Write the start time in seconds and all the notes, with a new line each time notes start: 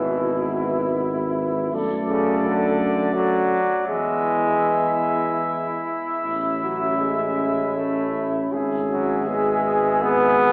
Already playing: G#1 B2 B3 E4 E5
1.73 F#2 A3 A4 D5
2.09 C#3
2.46 D3
3.14 F#3
3.87 E2 G#3 B3 E4 E5
6.23 A1 C#4
6.62 F#3
7.00 G#3
7.76 A3
8.52 G#1 G#4 E5
8.90 F#3
9.27 G#3 B3
10.02 B3